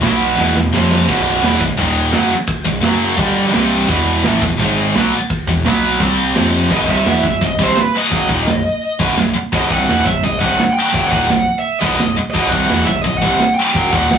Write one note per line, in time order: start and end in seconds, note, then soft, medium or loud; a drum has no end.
0.01 0.35 B1 loud
0.01 0.35 B2 loud
0.01 0.36 F#3 loud
0.01 0.38 B3 loud
0.01 snare medium
0.01 ride loud
0.20 ride medium
0.36 0.54 E1 medium
0.36 0.54 E2 medium
0.36 0.54 B2 loud
0.36 0.54 E3 loud
0.36 snare medium
0.56 0.72 E1 medium
0.56 0.70 E2 medium
0.56 0.70 B2 medium
0.56 snare medium
0.72 1.06 F1 loud
0.72 1.08 F2 medium
0.72 1.08 C3 loud
0.72 1.08 F3 loud
0.72 snare medium
0.91 snare medium
1.08 1.41 B0 medium
1.08 1.42 B1 medium
1.08 1.43 F#2 medium
1.08 1.42 B2 medium
1.08 kick loud
1.08 crash loud
1.27 ride medium
1.43 1.60 E1 medium
1.43 1.60 E2 medium
1.43 1.60 B2 loud
1.43 1.61 E3 loud
1.43 snare loud
1.43 ride medium
1.60 1.77 B0 medium
1.60 1.75 B1 medium
1.60 1.75 F#2 medium
1.60 kick medium
1.60 ride medium
1.78 2.11 D#1 medium
1.78 2.11 D#2 loud
1.78 2.12 A#2 loud
1.78 2.13 D#3 loud
1.78 kick medium
1.78 ride medium
1.95 ride medium
2.12 2.30 F#1 loud
2.12 2.30 F#2 loud
2.12 2.30 C#3 loud
2.12 2.30 F#3 loud
2.12 snare loud
2.12 ride loud
2.30 ride medium
2.47 kick loud
2.47 ride loud
2.65 2.82 B0 medium
2.65 2.80 B1 medium
2.65 2.80 F#2 medium
2.65 kick loud
2.65 ride medium
2.81 3.16 F#1 medium
2.81 3.16 F#2 loud
2.81 3.16 C#3 loud
2.81 3.16 F#3 loud
2.81 snare loud
2.81 ride medium
3.00 ride medium
3.16 3.51 G1 medium
3.16 3.53 G2 loud
3.16 3.53 D3 loud
3.16 3.53 G3 loud
3.16 kick loud
3.16 ride loud
3.21 3.55 G3 loud
3.34 ride medium
3.53 3.87 C1 loud
3.53 3.88 C2 medium
3.53 3.89 G2 loud
3.53 3.89 C3 loud
3.53 snare loud
3.53 ride loud
3.71 ride medium
3.88 4.22 E1 medium
3.88 4.24 E2 medium
3.88 4.24 B2 loud
3.88 4.24 E3 medium
3.88 kick loud
3.88 crash loud
4.06 ride medium
4.23 4.41 A1 loud
4.23 4.42 A2 loud
4.23 4.41 E3 loud
4.23 4.42 A3 loud
4.23 snare loud
4.23 ride medium
4.41 4.58 E1 medium
4.41 4.56 E2 medium
4.41 4.56 B2 medium
4.41 kick loud
4.41 ride medium
4.59 4.92 G#1 loud
4.59 4.95 G#2 loud
4.59 4.95 D#3 medium
4.59 4.95 G#3 loud
4.59 kick loud
4.59 ride medium
4.77 ride medium
4.95 5.12 B1 loud
4.95 5.13 B2 medium
4.95 5.13 F#3 loud
4.95 5.13 B3 loud
4.95 snare loud
4.95 ride loud
5.13 ride medium
5.30 kick loud
5.30 ride medium
5.47 5.64 E1 medium
5.47 5.62 E2 medium
5.47 5.62 B2 medium
5.47 kick medium
5.47 ride medium
5.65 5.99 B1 loud
5.65 6.00 B2 medium
5.65 6.00 F#3 loud
5.65 6.01 B3 medium
5.65 snare loud
5.65 ride medium
5.83 ride medium
6.00 6.33 C2 medium
6.00 6.34 C3 medium
6.00 6.35 G3 medium
6.00 6.36 C4 loud
6.00 kick loud
6.00 ride medium
6.18 ride medium
6.35 6.68 F1 loud
6.35 6.70 F2 loud
6.35 6.70 C3 medium
6.35 6.70 F3 loud
6.35 snare loud
6.35 ride medium
6.53 ride medium
6.70 6.87 B0 medium
6.70 6.88 B1 medium
6.70 6.88 F#2 medium
6.70 6.88 B2 medium
6.70 6.90 D#5 medium
6.70 kick medium
6.70 open hi-hat medium
6.87 7.05 C1 medium
6.87 7.04 C2 loud
6.87 7.05 G2 medium
6.87 7.05 C3 loud
6.87 7.25 E5 medium
6.87 kick loud
6.87 open hi-hat medium
7.04 7.22 E1 medium
7.04 7.22 E2 medium
7.04 7.23 B2 medium
7.04 7.23 E3 medium
7.04 snare medium
7.04 open hi-hat medium
7.23 7.40 B0 medium
7.23 7.38 B1 medium
7.23 7.38 F#2 medium
7.23 7.43 E5 medium
7.23 kick medium
7.23 open hi-hat medium
7.41 7.58 B0 medium
7.41 7.56 B1 medium
7.41 7.56 F#2 medium
7.41 7.61 D#5 loud
7.41 kick medium
7.41 open hi-hat medium
7.59 7.76 C1 medium
7.59 7.76 C2 medium
7.59 7.76 G2 medium
7.59 7.76 C3 medium
7.59 kick loud
7.59 open hi-hat medium
7.63 7.80 C5 medium
7.76 7.96 B4 medium
7.76 snare loud
7.76 open hi-hat medium
7.93 8.98 D#5 medium
7.93 open hi-hat soft
8.10 8.28 F#1 medium
8.10 8.28 F#2 medium
8.10 8.28 C#3 medium
8.10 8.29 F#3 medium
8.10 kick loud
8.10 open hi-hat medium
8.28 8.46 D#1 medium
8.28 8.46 D#2 medium
8.28 8.46 A#2 medium
8.28 8.47 D#3 loud
8.28 kick loud
8.28 open hi-hat medium
8.46 8.64 B0 medium
8.46 8.61 B1 medium
8.46 8.62 F#2 medium
8.46 snare loud
8.46 open hi-hat medium
8.64 open hi-hat medium
8.81 open hi-hat medium
8.99 9.16 B0 medium
8.99 9.16 B1 medium
8.99 9.16 F#2 medium
8.99 9.17 B2 medium
8.99 kick loud
8.99 open hi-hat medium
9.17 9.34 B0 medium
9.17 9.32 B1 medium
9.17 9.32 F#2 medium
9.17 snare loud
9.17 open hi-hat medium
9.34 muted distorted electric guitar stroke medium
9.34 muted picked electric bass stroke soft
9.34 open hi-hat medium
9.52 9.69 B0 loud
9.52 9.69 B1 medium
9.52 9.70 F#2 loud
9.52 9.70 B2 loud
9.52 9.72 D#5 medium
9.52 kick loud
9.52 open hi-hat medium
9.70 9.87 C1 medium
9.70 9.87 C2 loud
9.70 9.88 G2 medium
9.70 9.88 C3 loud
9.70 10.05 F#5 medium
9.70 kick loud
9.70 open hi-hat medium
9.88 10.05 E1 medium
9.88 10.04 E2 medium
9.88 10.04 B2 loud
9.88 10.06 E3 loud
9.88 snare loud
9.88 open hi-hat medium
10.05 10.22 B0 medium
10.05 10.20 B1 medium
10.05 10.20 F#2 medium
10.05 10.23 E5 medium
10.05 kick medium
10.05 open hi-hat medium
10.23 10.40 B0 medium
10.23 10.38 B1 medium
10.23 10.38 F#2 medium
10.23 10.39 D#5 loud
10.23 kick medium
10.23 open hi-hat medium
10.39 10.58 C1 loud
10.39 10.58 C2 medium
10.39 10.59 G2 loud
10.39 10.59 C3 loud
10.39 10.73 F#5 loud
10.39 kick loud
10.39 open hi-hat medium
10.59 snare loud
10.59 open hi-hat medium
10.73 11.07 G5 loud
10.73 open hi-hat medium
10.93 11.11 F#1 medium
10.93 11.09 F#2 medium
10.93 11.10 C#3 medium
10.93 11.10 F#3 medium
10.93 kick loud
10.93 open hi-hat medium
11.07 11.27 D#2 medium
11.07 11.28 A#2 loud
11.07 11.28 D#3 loud
11.07 11.59 F#5 medium
11.12 11.28 D#1 medium
11.12 kick loud
11.12 open hi-hat medium
11.28 11.46 B0 medium
11.28 11.43 B1 medium
11.28 11.43 F#2 medium
11.28 snare loud
11.28 open hi-hat medium
11.47 open hi-hat medium
11.59 11.80 E5 loud
11.64 open hi-hat medium
11.79 11.99 B0 medium
11.79 11.99 B1 medium
11.79 11.99 F#2 medium
11.79 12.00 B2 medium
11.79 12.14 D#5 medium
11.79 kick medium
11.79 open hi-hat medium
11.99 12.16 B0 medium
11.99 12.14 B1 medium
11.99 12.15 F#2 medium
11.99 snare loud
11.99 open hi-hat medium
12.17 muted distorted electric guitar stroke medium
12.17 muted picked electric bass stroke soft
12.17 open hi-hat medium
12.31 12.50 B1 medium
12.31 12.51 F#2 medium
12.31 12.51 B2 medium
12.31 12.49 D#5 medium
12.35 12.51 B0 medium
12.35 kick loud
12.35 open hi-hat medium
12.49 12.69 C1 medium
12.49 12.68 C2 medium
12.49 12.68 G2 medium
12.49 12.69 C3 medium
12.49 12.84 F#5 medium
12.49 kick loud
12.49 open hi-hat medium
12.68 12.86 E1 medium
12.68 12.86 E2 medium
12.68 12.86 B2 medium
12.68 12.87 E3 loud
12.68 snare loud
12.68 open hi-hat medium
12.85 13.04 B0 medium
12.85 13.01 B1 medium
12.85 13.01 F#2 medium
12.85 13.01 E5 loud
12.85 kick medium
12.85 open hi-hat medium
13.01 13.22 B0 medium
13.01 13.19 B1 medium
13.01 13.19 F#2 medium
13.01 13.17 D#5 medium
13.01 kick medium
13.01 open hi-hat medium
13.18 13.40 C2 medium
13.18 13.40 G2 medium
13.18 13.54 F#5 loud
13.18 open hi-hat medium
13.22 13.39 C1 medium
13.22 13.40 C3 medium
13.22 kick loud
13.39 snare loud
13.39 open hi-hat medium
13.55 13.91 G5 loud
13.55 open hi-hat soft
13.74 13.92 F#1 medium
13.74 13.92 F#2 medium
13.74 13.93 C#3 loud
13.74 13.93 F#3 medium
13.74 kick loud
13.74 open hi-hat medium
13.91 14.10 D#1 loud
13.91 14.10 D#2 medium
13.91 14.11 A#2 medium
13.91 14.11 D#3 loud
13.91 14.18 F#5 medium
13.91 kick loud
13.91 open hi-hat medium
14.10 14.18 B0 medium
14.10 14.18 B1 medium
14.10 14.18 F#2 medium
14.10 snare loud
14.10 open hi-hat medium